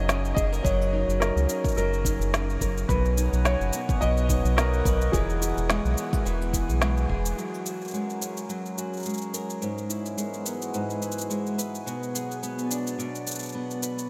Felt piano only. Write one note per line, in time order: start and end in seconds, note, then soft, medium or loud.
0.00 0.33 D#5 loud
0.34 0.65 D#5 medium
0.62 1.16 C#5 medium
1.20 1.75 A#4 medium
1.77 2.57 A#4 medium
2.88 3.47 B4 medium
3.45 4.03 C#5 loud
4.01 4.59 D#5 loud
4.57 5.15 A#4 medium
5.12 7.05 G#4 medium